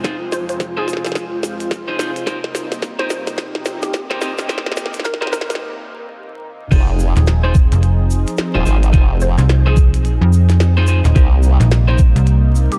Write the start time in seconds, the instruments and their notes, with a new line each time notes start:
Already playing: analog synth pad F2 C3 G#3, ambient pad F4 C5 G#5
0.04 clean electric guitar D#4 F4 G#4 C5, analog synth pad F4, kick, snare, closed hi-hat, shaker
0.32 synth pluck C5, snare, shaker
0.49 synth pluck C5, closed hi-hat, shaker
0.60 kick, snare, closed hi-hat, shaker
0.77 clean electric guitar D#4 F4 G#4 C5, synth pluck G#4
0.88 snare, shaker
0.93 snare
0.97 snare
1.05 snare, closed hi-hat, shaker
1.06 snare
1.12 snare
1.15 kick, snare, closed hi-hat, shaker
1.43 snare, shaker
1.60 closed hi-hat, shaker
1.71 kick, snare, closed hi-hat, shaker
1.88 clean electric guitar D#4 F4 G#4 C5
1.98 clean electric guitar D#4 F4 G#4 C5, snare, shaker
2.16 closed hi-hat, shaker
2.26 analog synth pad C2 A#3 D#4, ambient pad C4, clean electric guitar D#4 G4 A#4 C5, kick, snare, closed hi-hat, shaker
2.41 ambient pad G4, snare
2.55 snare, shaker
2.72 snare, closed hi-hat, shaker
2.82 kick, snare, closed hi-hat, shaker
2.99 clean electric guitar D#4 G4 A#4 C5, synth pluck C5, snare
3.10 snare, shaker
3.27 snare, closed hi-hat, shaker
3.31 ambient pad D#5
3.38 kick, snare, closed hi-hat, shaker
3.55 snare
3.65 snare, shaker
3.82 synth pluck G4, snare, closed hi-hat, shaker
3.93 kick, snare, closed hi-hat, shaker
4.10 clean electric guitar D#4 G4 A#4 C5, snare
4.21 clean electric guitar D#4 G4 A#4 C5, snare, shaker
4.38 snare, closed hi-hat, shaker
4.49 clean electric guitar D#4 G4 A#4 C5, kick, snare, closed hi-hat, shaker
4.58 snare
4.66 snare
4.72 snare
4.76 snare, shaker
4.86 snare
4.94 closed hi-hat, shaker
5.00 snare
5.04 synth pluck A#4, kick, snare, closed hi-hat, shaker
5.14 snare
5.21 clean electric guitar D#4 G4 A#4 C5, synth pluck A#4, snare
5.27 snare
5.32 synth pluck A#4, snare, shaker
5.41 snare
5.49 synth pluck A#4, snare, closed hi-hat, shaker
5.55 snare
6.71 wobble bass F1, analog synth pad F3 C4 D#4 G#4, clean electric guitar D#4 F4 G#4 C5, kick, closed hi-hat, crash, shaker
6.99 shaker
7.16 fm bass D#1, snare, closed hi-hat, shaker
7.27 snare, closed hi-hat, shaker
7.43 clean electric guitar D#4 F4 G#4 C5, synth pluck C5
7.55 kick, shaker
7.72 fm bass F1, closed hi-hat, shaker
7.83 closed hi-hat, shaker
8.11 shaker
8.27 closed hi-hat, shaker
8.37 snare, closed hi-hat, shaker
8.55 wobble bass D#1, clean electric guitar D#4 F4 G#4 C5
8.65 wobble bass G#1, clean electric guitar D#4 F4 G#4 C5, shaker
8.83 closed hi-hat, shaker
8.93 wobble bass F1, clean electric guitar D#4 F4 G#4 C5, kick, closed hi-hat, shaker
9.21 synth pluck C5, shaker
9.38 fm bass C2, synth pluck C5, snare, closed hi-hat, shaker
9.49 snare, closed hi-hat, shaker
9.66 clean electric guitar D#4 F4 G#4 C5, synth pluck G#4
9.77 kick, shaker
9.94 fm bass B1, closed hi-hat, shaker
10.05 closed hi-hat, shaker
10.21 fm bass F2
10.33 shaker
10.49 snare, closed hi-hat, shaker
10.60 snare, closed hi-hat, shaker
10.77 clean electric guitar D#4 F4 G#4 C5
10.87 clean electric guitar D#4 F4 G#4 C5, shaker
11.05 fm bass D#1, snare, closed hi-hat, shaker
11.15 wobble bass C2, analog synth pad C3 G3 A#3, clean electric guitar D#4 G4 A#4 C5, kick, closed hi-hat, shaker
11.43 shaker
11.60 fm bass A#1, snare, closed hi-hat, shaker
11.71 snare, closed hi-hat, shaker
11.88 clean electric guitar D#4 G4 A#4 C5, synth pluck C5
11.98 kick, shaker
12.16 fm bass C2, closed hi-hat, shaker
12.27 closed hi-hat, shaker
12.55 shaker
12.72 synth pluck G4, closed hi-hat, shaker